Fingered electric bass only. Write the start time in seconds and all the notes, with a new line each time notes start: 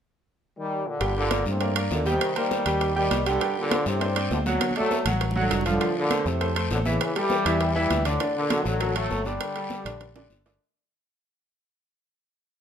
1.01 G1
1.46 G2
1.91 D#2
2.66 D#2
3.11 C2
3.86 G2
4.31 D2
5.05 A1
5.51 F1
6.26 F2
6.71 A1
7.46 E2
7.90 D2
8.65 A1
9.10 G1
9.85 A#1
10.30 G1